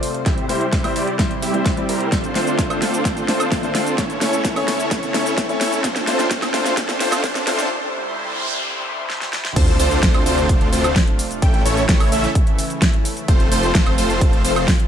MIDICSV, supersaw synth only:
0, 0, Header, 1, 2, 480
1, 0, Start_track
1, 0, Key_signature, -1, "minor"
1, 0, Tempo, 465116
1, 269, Time_signature, 4, 2, 24, 8
1, 15352, End_track
2, 0, Start_track
2, 0, Title_t, "Supersaw synth"
2, 0, Program_c, 0, 81
2, 269, Note_on_c, 0, 55, 84
2, 269, Note_on_c, 0, 60, 80
2, 269, Note_on_c, 0, 64, 78
2, 269, Note_on_c, 0, 67, 77
2, 269, Note_on_c, 0, 76, 96
2, 473, Note_off_c, 0, 55, 0
2, 473, Note_off_c, 0, 60, 0
2, 473, Note_off_c, 0, 64, 0
2, 473, Note_off_c, 0, 67, 0
2, 473, Note_off_c, 0, 76, 0
2, 508, Note_on_c, 0, 67, 89
2, 509, Note_on_c, 0, 55, 97
2, 509, Note_on_c, 0, 60, 88
2, 509, Note_on_c, 0, 64, 91
2, 509, Note_on_c, 0, 72, 108
2, 685, Note_off_c, 0, 55, 0
2, 685, Note_off_c, 0, 60, 0
2, 685, Note_off_c, 0, 64, 0
2, 685, Note_off_c, 0, 67, 0
2, 685, Note_off_c, 0, 72, 0
2, 748, Note_on_c, 0, 64, 72
2, 748, Note_on_c, 0, 67, 71
2, 748, Note_on_c, 0, 72, 84
2, 749, Note_on_c, 0, 55, 77
2, 749, Note_on_c, 0, 60, 70
2, 960, Note_off_c, 0, 55, 0
2, 960, Note_off_c, 0, 60, 0
2, 960, Note_off_c, 0, 64, 0
2, 960, Note_off_c, 0, 67, 0
2, 960, Note_off_c, 0, 72, 0
2, 989, Note_on_c, 0, 55, 97
2, 989, Note_on_c, 0, 60, 86
2, 989, Note_on_c, 0, 64, 89
2, 989, Note_on_c, 0, 67, 86
2, 989, Note_on_c, 0, 74, 105
2, 1165, Note_off_c, 0, 74, 0
2, 1166, Note_off_c, 0, 55, 0
2, 1166, Note_off_c, 0, 60, 0
2, 1166, Note_off_c, 0, 64, 0
2, 1166, Note_off_c, 0, 67, 0
2, 1469, Note_on_c, 0, 55, 97
2, 1469, Note_on_c, 0, 60, 86
2, 1469, Note_on_c, 0, 67, 84
2, 1469, Note_on_c, 0, 76, 102
2, 1470, Note_on_c, 0, 64, 87
2, 1920, Note_off_c, 0, 55, 0
2, 1920, Note_off_c, 0, 60, 0
2, 1920, Note_off_c, 0, 64, 0
2, 1920, Note_off_c, 0, 67, 0
2, 1920, Note_off_c, 0, 76, 0
2, 1949, Note_on_c, 0, 55, 84
2, 1949, Note_on_c, 0, 60, 76
2, 1949, Note_on_c, 0, 67, 73
2, 1949, Note_on_c, 0, 70, 89
2, 1950, Note_on_c, 0, 64, 74
2, 2160, Note_off_c, 0, 55, 0
2, 2160, Note_off_c, 0, 60, 0
2, 2160, Note_off_c, 0, 64, 0
2, 2160, Note_off_c, 0, 67, 0
2, 2160, Note_off_c, 0, 70, 0
2, 2190, Note_on_c, 0, 60, 84
2, 2190, Note_on_c, 0, 62, 75
2, 2190, Note_on_c, 0, 65, 77
2, 2190, Note_on_c, 0, 69, 79
2, 2190, Note_on_c, 0, 72, 95
2, 2401, Note_off_c, 0, 60, 0
2, 2401, Note_off_c, 0, 62, 0
2, 2401, Note_off_c, 0, 65, 0
2, 2401, Note_off_c, 0, 69, 0
2, 2401, Note_off_c, 0, 72, 0
2, 2429, Note_on_c, 0, 60, 91
2, 2429, Note_on_c, 0, 62, 80
2, 2429, Note_on_c, 0, 65, 84
2, 2429, Note_on_c, 0, 69, 85
2, 2429, Note_on_c, 0, 72, 99
2, 2640, Note_off_c, 0, 60, 0
2, 2640, Note_off_c, 0, 62, 0
2, 2640, Note_off_c, 0, 65, 0
2, 2640, Note_off_c, 0, 69, 0
2, 2640, Note_off_c, 0, 72, 0
2, 2669, Note_on_c, 0, 60, 89
2, 2669, Note_on_c, 0, 62, 82
2, 2669, Note_on_c, 0, 65, 83
2, 2669, Note_on_c, 0, 69, 81
2, 2669, Note_on_c, 0, 72, 97
2, 2873, Note_off_c, 0, 60, 0
2, 2873, Note_off_c, 0, 62, 0
2, 2873, Note_off_c, 0, 65, 0
2, 2873, Note_off_c, 0, 69, 0
2, 2873, Note_off_c, 0, 72, 0
2, 2909, Note_on_c, 0, 60, 71
2, 2909, Note_on_c, 0, 62, 66
2, 2909, Note_on_c, 0, 65, 65
2, 2909, Note_on_c, 0, 69, 68
2, 2909, Note_on_c, 0, 72, 80
2, 3130, Note_off_c, 0, 60, 0
2, 3130, Note_off_c, 0, 62, 0
2, 3130, Note_off_c, 0, 65, 0
2, 3130, Note_off_c, 0, 69, 0
2, 3130, Note_off_c, 0, 72, 0
2, 3149, Note_on_c, 0, 60, 89
2, 3149, Note_on_c, 0, 62, 80
2, 3149, Note_on_c, 0, 65, 83
2, 3149, Note_on_c, 0, 69, 81
2, 3149, Note_on_c, 0, 72, 99
2, 3360, Note_off_c, 0, 60, 0
2, 3360, Note_off_c, 0, 62, 0
2, 3360, Note_off_c, 0, 65, 0
2, 3360, Note_off_c, 0, 69, 0
2, 3360, Note_off_c, 0, 72, 0
2, 3389, Note_on_c, 0, 60, 91
2, 3389, Note_on_c, 0, 62, 83
2, 3389, Note_on_c, 0, 65, 82
2, 3389, Note_on_c, 0, 69, 83
2, 3389, Note_on_c, 0, 72, 98
2, 3600, Note_off_c, 0, 60, 0
2, 3600, Note_off_c, 0, 62, 0
2, 3600, Note_off_c, 0, 65, 0
2, 3600, Note_off_c, 0, 69, 0
2, 3600, Note_off_c, 0, 72, 0
2, 3629, Note_on_c, 0, 60, 96
2, 3629, Note_on_c, 0, 62, 84
2, 3629, Note_on_c, 0, 65, 85
2, 3629, Note_on_c, 0, 69, 86
2, 3629, Note_on_c, 0, 72, 102
2, 3833, Note_off_c, 0, 60, 0
2, 3833, Note_off_c, 0, 62, 0
2, 3833, Note_off_c, 0, 65, 0
2, 3833, Note_off_c, 0, 69, 0
2, 3833, Note_off_c, 0, 72, 0
2, 3869, Note_on_c, 0, 60, 79
2, 3869, Note_on_c, 0, 62, 69
2, 3869, Note_on_c, 0, 65, 69
2, 3869, Note_on_c, 0, 69, 70
2, 3869, Note_on_c, 0, 72, 85
2, 4090, Note_off_c, 0, 60, 0
2, 4090, Note_off_c, 0, 62, 0
2, 4090, Note_off_c, 0, 65, 0
2, 4090, Note_off_c, 0, 69, 0
2, 4090, Note_off_c, 0, 72, 0
2, 4109, Note_on_c, 0, 61, 88
2, 4109, Note_on_c, 0, 64, 80
2, 4109, Note_on_c, 0, 69, 80
2, 4109, Note_on_c, 0, 73, 97
2, 4320, Note_off_c, 0, 61, 0
2, 4320, Note_off_c, 0, 64, 0
2, 4320, Note_off_c, 0, 69, 0
2, 4320, Note_off_c, 0, 73, 0
2, 4349, Note_on_c, 0, 61, 93
2, 4349, Note_on_c, 0, 64, 84
2, 4349, Note_on_c, 0, 69, 84
2, 4349, Note_on_c, 0, 73, 105
2, 4560, Note_off_c, 0, 61, 0
2, 4560, Note_off_c, 0, 64, 0
2, 4560, Note_off_c, 0, 69, 0
2, 4560, Note_off_c, 0, 73, 0
2, 4589, Note_on_c, 0, 61, 93
2, 4589, Note_on_c, 0, 64, 85
2, 4589, Note_on_c, 0, 69, 84
2, 4589, Note_on_c, 0, 73, 102
2, 4793, Note_off_c, 0, 61, 0
2, 4793, Note_off_c, 0, 64, 0
2, 4793, Note_off_c, 0, 69, 0
2, 4793, Note_off_c, 0, 73, 0
2, 4829, Note_on_c, 0, 61, 77
2, 4829, Note_on_c, 0, 64, 69
2, 4829, Note_on_c, 0, 69, 70
2, 4829, Note_on_c, 0, 73, 85
2, 5050, Note_off_c, 0, 61, 0
2, 5050, Note_off_c, 0, 64, 0
2, 5050, Note_off_c, 0, 69, 0
2, 5050, Note_off_c, 0, 73, 0
2, 5069, Note_on_c, 0, 61, 91
2, 5069, Note_on_c, 0, 64, 84
2, 5069, Note_on_c, 0, 69, 82
2, 5069, Note_on_c, 0, 73, 102
2, 5280, Note_off_c, 0, 61, 0
2, 5280, Note_off_c, 0, 64, 0
2, 5280, Note_off_c, 0, 69, 0
2, 5280, Note_off_c, 0, 73, 0
2, 5309, Note_on_c, 0, 61, 95
2, 5309, Note_on_c, 0, 64, 83
2, 5309, Note_on_c, 0, 69, 86
2, 5309, Note_on_c, 0, 73, 103
2, 5520, Note_off_c, 0, 61, 0
2, 5520, Note_off_c, 0, 64, 0
2, 5520, Note_off_c, 0, 69, 0
2, 5520, Note_off_c, 0, 73, 0
2, 5548, Note_on_c, 0, 69, 91
2, 5549, Note_on_c, 0, 61, 96
2, 5549, Note_on_c, 0, 64, 88
2, 5549, Note_on_c, 0, 73, 104
2, 5753, Note_off_c, 0, 61, 0
2, 5753, Note_off_c, 0, 64, 0
2, 5753, Note_off_c, 0, 69, 0
2, 5753, Note_off_c, 0, 73, 0
2, 5788, Note_on_c, 0, 61, 79
2, 5788, Note_on_c, 0, 64, 74
2, 5788, Note_on_c, 0, 69, 73
2, 5789, Note_on_c, 0, 73, 88
2, 6009, Note_off_c, 0, 61, 0
2, 6009, Note_off_c, 0, 64, 0
2, 6009, Note_off_c, 0, 69, 0
2, 6010, Note_off_c, 0, 73, 0
2, 6028, Note_on_c, 0, 60, 89
2, 6028, Note_on_c, 0, 62, 84
2, 6028, Note_on_c, 0, 65, 85
2, 6028, Note_on_c, 0, 69, 83
2, 6029, Note_on_c, 0, 72, 101
2, 6240, Note_off_c, 0, 60, 0
2, 6240, Note_off_c, 0, 62, 0
2, 6240, Note_off_c, 0, 65, 0
2, 6240, Note_off_c, 0, 69, 0
2, 6240, Note_off_c, 0, 72, 0
2, 6268, Note_on_c, 0, 60, 99
2, 6269, Note_on_c, 0, 62, 89
2, 6269, Note_on_c, 0, 65, 89
2, 6269, Note_on_c, 0, 69, 91
2, 6269, Note_on_c, 0, 72, 111
2, 6480, Note_off_c, 0, 60, 0
2, 6480, Note_off_c, 0, 62, 0
2, 6480, Note_off_c, 0, 65, 0
2, 6480, Note_off_c, 0, 69, 0
2, 6480, Note_off_c, 0, 72, 0
2, 6509, Note_on_c, 0, 60, 91
2, 6509, Note_on_c, 0, 62, 84
2, 6509, Note_on_c, 0, 65, 86
2, 6509, Note_on_c, 0, 69, 86
2, 6509, Note_on_c, 0, 72, 98
2, 6720, Note_off_c, 0, 60, 0
2, 6720, Note_off_c, 0, 62, 0
2, 6720, Note_off_c, 0, 65, 0
2, 6720, Note_off_c, 0, 69, 0
2, 6720, Note_off_c, 0, 72, 0
2, 6749, Note_on_c, 0, 60, 98
2, 6749, Note_on_c, 0, 62, 88
2, 6749, Note_on_c, 0, 65, 89
2, 6749, Note_on_c, 0, 69, 85
2, 6749, Note_on_c, 0, 72, 101
2, 6960, Note_off_c, 0, 60, 0
2, 6960, Note_off_c, 0, 62, 0
2, 6960, Note_off_c, 0, 65, 0
2, 6960, Note_off_c, 0, 69, 0
2, 6960, Note_off_c, 0, 72, 0
2, 6988, Note_on_c, 0, 60, 94
2, 6988, Note_on_c, 0, 62, 86
2, 6988, Note_on_c, 0, 65, 87
2, 6988, Note_on_c, 0, 69, 87
2, 6988, Note_on_c, 0, 72, 106
2, 7200, Note_off_c, 0, 60, 0
2, 7200, Note_off_c, 0, 62, 0
2, 7200, Note_off_c, 0, 65, 0
2, 7200, Note_off_c, 0, 69, 0
2, 7200, Note_off_c, 0, 72, 0
2, 7228, Note_on_c, 0, 62, 90
2, 7228, Note_on_c, 0, 69, 88
2, 7229, Note_on_c, 0, 60, 93
2, 7229, Note_on_c, 0, 65, 89
2, 7229, Note_on_c, 0, 72, 109
2, 7440, Note_off_c, 0, 60, 0
2, 7440, Note_off_c, 0, 62, 0
2, 7440, Note_off_c, 0, 65, 0
2, 7440, Note_off_c, 0, 69, 0
2, 7440, Note_off_c, 0, 72, 0
2, 7468, Note_on_c, 0, 60, 94
2, 7468, Note_on_c, 0, 62, 89
2, 7468, Note_on_c, 0, 65, 88
2, 7468, Note_on_c, 0, 69, 87
2, 7468, Note_on_c, 0, 72, 106
2, 7680, Note_off_c, 0, 60, 0
2, 7680, Note_off_c, 0, 62, 0
2, 7680, Note_off_c, 0, 65, 0
2, 7680, Note_off_c, 0, 69, 0
2, 7680, Note_off_c, 0, 72, 0
2, 7707, Note_on_c, 0, 65, 92
2, 7707, Note_on_c, 0, 69, 90
2, 7708, Note_on_c, 0, 60, 100
2, 7708, Note_on_c, 0, 62, 90
2, 7708, Note_on_c, 0, 72, 111
2, 7919, Note_off_c, 0, 60, 0
2, 7919, Note_off_c, 0, 62, 0
2, 7919, Note_off_c, 0, 65, 0
2, 7919, Note_off_c, 0, 69, 0
2, 7920, Note_off_c, 0, 72, 0
2, 9869, Note_on_c, 0, 60, 92
2, 9869, Note_on_c, 0, 62, 86
2, 9869, Note_on_c, 0, 65, 84
2, 9869, Note_on_c, 0, 69, 85
2, 9869, Note_on_c, 0, 72, 104
2, 10080, Note_off_c, 0, 60, 0
2, 10080, Note_off_c, 0, 62, 0
2, 10080, Note_off_c, 0, 65, 0
2, 10080, Note_off_c, 0, 69, 0
2, 10080, Note_off_c, 0, 72, 0
2, 10109, Note_on_c, 0, 60, 101
2, 10109, Note_on_c, 0, 62, 91
2, 10109, Note_on_c, 0, 65, 91
2, 10109, Note_on_c, 0, 69, 91
2, 10109, Note_on_c, 0, 72, 114
2, 10320, Note_off_c, 0, 60, 0
2, 10320, Note_off_c, 0, 62, 0
2, 10320, Note_off_c, 0, 65, 0
2, 10320, Note_off_c, 0, 69, 0
2, 10320, Note_off_c, 0, 72, 0
2, 10349, Note_on_c, 0, 60, 100
2, 10349, Note_on_c, 0, 65, 89
2, 10349, Note_on_c, 0, 69, 91
2, 10350, Note_on_c, 0, 62, 91
2, 10350, Note_on_c, 0, 72, 107
2, 10553, Note_off_c, 0, 60, 0
2, 10553, Note_off_c, 0, 62, 0
2, 10553, Note_off_c, 0, 65, 0
2, 10553, Note_off_c, 0, 69, 0
2, 10553, Note_off_c, 0, 72, 0
2, 10589, Note_on_c, 0, 60, 83
2, 10589, Note_on_c, 0, 62, 73
2, 10589, Note_on_c, 0, 65, 75
2, 10589, Note_on_c, 0, 69, 75
2, 10589, Note_on_c, 0, 72, 86
2, 11040, Note_off_c, 0, 60, 0
2, 11040, Note_off_c, 0, 62, 0
2, 11040, Note_off_c, 0, 65, 0
2, 11040, Note_off_c, 0, 69, 0
2, 11040, Note_off_c, 0, 72, 0
2, 11069, Note_on_c, 0, 60, 76
2, 11070, Note_on_c, 0, 62, 68
2, 11070, Note_on_c, 0, 65, 69
2, 11070, Note_on_c, 0, 69, 67
2, 11070, Note_on_c, 0, 72, 84
2, 11352, Note_off_c, 0, 60, 0
2, 11352, Note_off_c, 0, 62, 0
2, 11352, Note_off_c, 0, 65, 0
2, 11352, Note_off_c, 0, 69, 0
2, 11352, Note_off_c, 0, 72, 0
2, 11789, Note_on_c, 0, 57, 86
2, 11789, Note_on_c, 0, 61, 79
2, 11789, Note_on_c, 0, 64, 84
2, 11789, Note_on_c, 0, 69, 78
2, 11789, Note_on_c, 0, 79, 100
2, 11993, Note_off_c, 0, 57, 0
2, 11993, Note_off_c, 0, 61, 0
2, 11993, Note_off_c, 0, 64, 0
2, 11993, Note_off_c, 0, 69, 0
2, 11993, Note_off_c, 0, 79, 0
2, 12029, Note_on_c, 0, 57, 101
2, 12029, Note_on_c, 0, 61, 91
2, 12029, Note_on_c, 0, 64, 89
2, 12029, Note_on_c, 0, 69, 90
2, 12029, Note_on_c, 0, 73, 107
2, 12206, Note_off_c, 0, 57, 0
2, 12206, Note_off_c, 0, 61, 0
2, 12206, Note_off_c, 0, 64, 0
2, 12206, Note_off_c, 0, 69, 0
2, 12206, Note_off_c, 0, 73, 0
2, 12269, Note_on_c, 0, 57, 79
2, 12269, Note_on_c, 0, 61, 74
2, 12269, Note_on_c, 0, 64, 73
2, 12269, Note_on_c, 0, 69, 73
2, 12269, Note_on_c, 0, 73, 91
2, 12480, Note_off_c, 0, 57, 0
2, 12480, Note_off_c, 0, 61, 0
2, 12480, Note_off_c, 0, 64, 0
2, 12480, Note_off_c, 0, 69, 0
2, 12480, Note_off_c, 0, 73, 0
2, 12509, Note_on_c, 0, 57, 100
2, 12509, Note_on_c, 0, 61, 90
2, 12509, Note_on_c, 0, 64, 89
2, 12509, Note_on_c, 0, 69, 88
2, 12509, Note_on_c, 0, 76, 107
2, 12685, Note_off_c, 0, 57, 0
2, 12685, Note_off_c, 0, 61, 0
2, 12685, Note_off_c, 0, 64, 0
2, 12685, Note_off_c, 0, 69, 0
2, 12685, Note_off_c, 0, 76, 0
2, 13709, Note_on_c, 0, 57, 92
2, 13709, Note_on_c, 0, 60, 87
2, 13709, Note_on_c, 0, 65, 86
2, 13709, Note_on_c, 0, 69, 87
2, 13709, Note_on_c, 0, 72, 103
2, 13920, Note_off_c, 0, 57, 0
2, 13920, Note_off_c, 0, 60, 0
2, 13920, Note_off_c, 0, 65, 0
2, 13920, Note_off_c, 0, 69, 0
2, 13920, Note_off_c, 0, 72, 0
2, 13949, Note_on_c, 0, 69, 93
2, 13950, Note_on_c, 0, 57, 103
2, 13950, Note_on_c, 0, 60, 93
2, 13950, Note_on_c, 0, 65, 90
2, 13950, Note_on_c, 0, 72, 109
2, 14160, Note_off_c, 0, 57, 0
2, 14160, Note_off_c, 0, 60, 0
2, 14160, Note_off_c, 0, 65, 0
2, 14160, Note_off_c, 0, 69, 0
2, 14161, Note_off_c, 0, 72, 0
2, 14189, Note_on_c, 0, 57, 96
2, 14189, Note_on_c, 0, 60, 89
2, 14189, Note_on_c, 0, 65, 88
2, 14189, Note_on_c, 0, 69, 92
2, 14189, Note_on_c, 0, 72, 108
2, 14393, Note_off_c, 0, 57, 0
2, 14393, Note_off_c, 0, 60, 0
2, 14393, Note_off_c, 0, 65, 0
2, 14393, Note_off_c, 0, 69, 0
2, 14393, Note_off_c, 0, 72, 0
2, 14430, Note_on_c, 0, 57, 81
2, 14430, Note_on_c, 0, 60, 76
2, 14430, Note_on_c, 0, 65, 74
2, 14430, Note_on_c, 0, 69, 77
2, 14430, Note_on_c, 0, 72, 89
2, 14880, Note_off_c, 0, 60, 0
2, 14880, Note_off_c, 0, 65, 0
2, 14880, Note_off_c, 0, 69, 0
2, 14880, Note_off_c, 0, 72, 0
2, 14881, Note_off_c, 0, 57, 0
2, 14909, Note_on_c, 0, 57, 73
2, 14909, Note_on_c, 0, 60, 68
2, 14909, Note_on_c, 0, 65, 66
2, 14909, Note_on_c, 0, 69, 68
2, 14909, Note_on_c, 0, 72, 83
2, 15191, Note_off_c, 0, 57, 0
2, 15191, Note_off_c, 0, 60, 0
2, 15191, Note_off_c, 0, 65, 0
2, 15191, Note_off_c, 0, 69, 0
2, 15191, Note_off_c, 0, 72, 0
2, 15352, End_track
0, 0, End_of_file